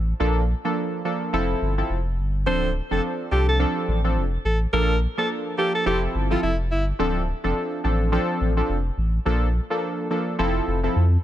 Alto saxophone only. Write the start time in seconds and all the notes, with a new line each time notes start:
2.47 C5
2.92 A4
3.32 G4
3.48 A4
4.45 A4
4.73 A#4
5.18 A4
5.58 G4
5.75 A4
5.86 G4
6.31 F4
6.43 E4
6.71 E4